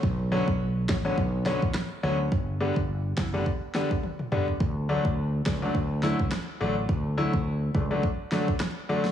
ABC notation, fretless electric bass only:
X:1
M:4/4
L:1/16
Q:"Swing 16ths" 1/4=105
K:D
V:1 name="Fretless electric bass" clef=bass
B,,,3 B,,,3 A,,,2 B,,,3 A,,, z2 D,,2 | G,,,3 G,,,3 F,,,2 z8 | D,,3 D,,3 C,,2 D,,3 C,, z2 A,,,2 | D,,3 D,,3 C,,2 z8 |]